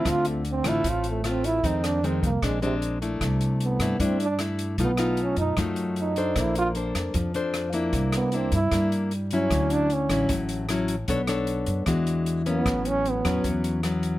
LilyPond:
<<
  \new Staff \with { instrumentName = "Trombone" } { \time 4/4 \key d \lydian \tempo 4 = 152 f'8 a8 c'8 e'8 f'8 a8 c'8 e'8 | ees'8 d'8 c'8 bes8 aes8 c8 r4 | r4 b4 c'8 d'8 r4 | b4 cis'8 dis'8 r4 dis'4 |
e'8 f'8 r2. | r8 b8 c'8 e'4 r4 cis'8~ | cis'8 d'8 cis'4 r2 | r2. r8 b8~ |
b8 cis'8 b4 r2 | }
  \new Staff \with { instrumentName = "Nylon-string guitar" } { \time 4/4 \key d \lydian << { <a c' f'>4 r8 <a c' f'>4. <a c' f'>4 | <ees aes c'>4 <ees aes c'>8 r8 <aes c' d'>8 <aes c' d'>4 <a d' e'>8~ | <a d' e'>4. <a d' e'>8 <a d' e'>8 r8 <a d' e'>4 | <a dis' eis'>8 <a dis' eis'>4. <a dis' eis'>4. <d' a' c''>8~ |
<d' a' c''>4 <d' a' c''>4. <d' a' c''>4 <bes d' e'>8~ | <bes d' e'>4 <bes d' e'>8 r8 <bes d' e'>4 r8 <fis cis' e'>8~ | <fis cis' e'>4 r8 <fis cis' e'>4. <fis cis' e'>8 r8 | <d' a' cis''>8 <d' a' cis''>4. <gis d' fis'>4. <fis b cis'>8~ |
<fis b cis'>4. <fis b cis'>4. <fis b cis'>4 | } \\ { d2 a,2 | f,2 bes,2 | c2 g2 | b,2 fis2 |
bes2 f2 | c2 g2 | d2 a,2 | b2 e2 |
a,2 e2 | } >> }
  \new Staff \with { instrumentName = "Upright bass" } { \clef bass \time 4/4 \key d \lydian d,4. a,,8 a,,2 | f,4. c,8 bes,,2 | c,4. g,8 g,2 | b,,4. fis,8 fis,2 |
bes,,4. f,8 f,2 | c,4. g,8 g,2 | d,4. a,,8 a,,2 | b,,4. fis,8 e,2 |
a,,4. e,8 e,2 | }
  \new DrumStaff \with { instrumentName = "Drums" } \drummode { \time 4/4 <hh bd ss>8 hh8 hh8 <hh ss>8 <hh bd>8 hh8 <hh ss>8 hh8 | <hh bd>8 <hh ss>8 hh8 <hh bd>8 <hh bd ss>8 hh8 hh8 hh8 | <hh bd ss>8 hh8 hh8 <hh ss>8 <hh bd>8 hh8 <hh ss>8 hh8 | <hh bd>8 <hh ss>8 hh8 hh8 <hh bd ss>8 hh8 hh8 hh8 |
<hh bd ss>8 hh8 hh8 <hh ss>8 <hh bd>8 hh8 <hh ss>8 hh8 | <hh bd>8 <hh ss>8 hh8 <hh bd>8 <hh bd ss>8 hh8 hh8 hh8 | <hh bd ss>8 hh8 hh8 <hh ss>8 <hh bd>8 hh8 <hh ss>8 hh8 | <hh bd>8 <hh ss>8 hh8 hh8 <hh bd ss>8 hh8 hh8 hh8 |
<hh bd ss>8 hh8 hh8 <hh ss>8 <hh bd>8 hh8 <hh ss>8 hh8 | }
>>